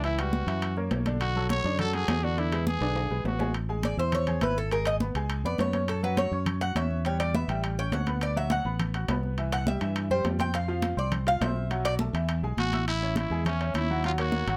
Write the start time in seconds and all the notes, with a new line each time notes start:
Already playing: C#2
0.04 E3 E4 E5, high conga, high timbale
0.18 G3 F#4 G4 B4, high conga, high timbale
0.33 high conga
0.47 F#2 E3 E4 E5, high timbale
0.62 high conga, high timbale
0.77 A#3 A#4 C#5, high conga
0.91 B1, high conga, high timbale, low timbale
1.06 D3 D4 D5, high conga, high timbale
1.21 F#4, high timbale
1.35 F#3 F#4 A4, high conga
1.49 C#5, high conga, high timbale
1.64 F#2 D3 D4 D5, high conga
1.79 F#3 F#4 A4, high conga, low conga, high timbale
1.93 F#3 F#4 G#4 A4, high conga, high timbale
2.08 E2, high conga, high timbale, low timbale
2.23 D3 D4 F#4 D5, high conga
2.37 D3 D4 E4 D5, high conga, high timbale
2.52 G#3 G#4 B4, high conga, high timbale
2.67 G#4, high conga
2.81 B1 D3 D4 D5, high timbale
2.96 high conga, high timbale
3.10 B1 G#3 G#4 B4, high conga
3.24 A1 F#4, high conga, low timbale
3.39 G#3 G#4 G#5, high conga, low timbale
3.54 high conga, high timbale
3.69 G#3 G#4 G#5, high conga
3.83 D5, high conga, high timbale
3.97 E2 E4 C5 E5 E6, high conga
4.12 C#5, high conga, low conga, high timbale
4.27 G#4 G#5 G#6, high conga, low conga, high timbale
4.41 G#1 E4 B4 E5 E6, high conga, high timbale
4.57 A4, high conga
4.71 G#3 G#4 A#4 G#5, high conga, high timbale
4.85 D#5, high conga, high timbale
5.00 B3 B4 B5, high conga
5.15 C#2 G#3 G#4 G#5, high timbale
5.29 high conga, high timbale
5.44 F2 B3 B4 D5 B5, high conga
5.58 F#2 C#5, high conga, high timbale, low timbale
5.73 C#4 C#5 C#6, high conga, high timbale
5.88 A4, high timbale
6.03 F#3 F#4 B4 F#5, high conga
6.17 C#5, high conga, high timbale
6.31 F#2 C#4 C#5 C#6, high conga
6.46 high conga, low conga, high timbale
6.61 F#4 F#5 F#6, high conga, high timbale
6.75 E2 C#4 C#5 E5 C#6, high conga, high timbale
6.91 high conga
7.05 G3 G4 C#5 G5, high conga, high timbale
7.20 D5, high conga, high timbale
7.34 B3 B4 E5 B5, high conga
7.48 A1 G3 G4 G5, high timbale
7.63 high conga, high timbale
7.78 C#4 C#5 G5 C#6, high conga
7.92 D2 F#5, high conga, high timbale, low timbale
8.07 B3 B4 B5, high conga, high timbale
8.21 D5, high conga, high timbale
8.36 F#3 F#4 E5 F#5, high conga
8.50 F#5, high conga, high timbale
8.65 A1 B3 B4 B5, high conga
8.80 high conga, low conga, high timbale
8.94 F#4 F#5 F#6, high conga, high timbale
9.08 C2 B3 B4 B5, high conga, high timbale, low timbale
9.23 high conga
9.38 E3 E4 E5, high conga, high timbale
9.52 F#5, high conga, high timbale
9.66 G3 G4 E5 G5, high conga
9.81 G2 E3 E4 E5, high timbale
9.95 high conga, high timbale
10.10 F#2 G3 G4 C5 G5, high conga
10.24 F2, high conga, high timbale, low timbale
10.39 C4 C5 G5 C6, high conga, high timbale
10.54 F5, high timbale
10.68 F3 F4 F5, high conga
10.82 high conga, high timbale
10.97 C2 C4 C5 D5 C6, high conga
11.12 high conga, low conga, high timbale
11.27 F4 F5 F6, high conga, high timbale
11.41 B1 C4 C5 E5 C6, high conga, high timbale, low timbale
11.56 high conga
11.70 F#3 F#4 F#5, high conga, high timbale
11.85 D5, high conga, high timbale
11.99 A3 A4 A5, high conga
12.13 E2 E3 E4 E5, high timbale
12.29 high conga, high timbale
12.43 B1 G#3 G#4 G#5, high conga
12.57 A1 F#4, high conga, high timbale
12.73 E4 E5 E6, high conga, high timbale
12.88 E4, high conga, high timbale
13.01 C#4 C#5 E5, high conga
13.16 E4, high conga, high timbale
13.30 E2 G#3 G#4 G#5, high conga
13.45 C#4 C#5 E5, high conga, low conga, high timbale
13.60 C#4 C#5 E5, high conga, high timbale
13.74 D#2 E4, high conga, high timbale
13.89 F#3 F#4 F#5, high conga
14.04 F#3 F4 F#4 F#5, high conga, high timbale
14.18 A#3 F#4 A#4 C#5, high conga, high timbale
14.32 high conga
14.47 G#1 F#3 F#4 F#5, high timbale